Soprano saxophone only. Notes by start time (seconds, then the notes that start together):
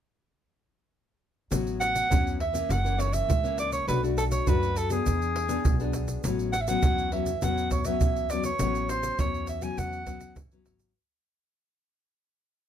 1.80 F#5
2.41 E5
2.71 F#5
3.00 C#5
3.13 E5
3.60 D5
3.73 C#5
3.88 B4
4.18 A4
4.32 C#5
4.48 B4
4.77 A4
4.92 G#4
6.53 F#5
6.61 E5
6.68 F#5
7.13 E5
7.43 F#5
7.72 C#5
7.86 E5
8.31 D5
8.45 C#5
8.90 C5
9.20 C#5
9.49 E5
9.63 G#5
9.78 F#5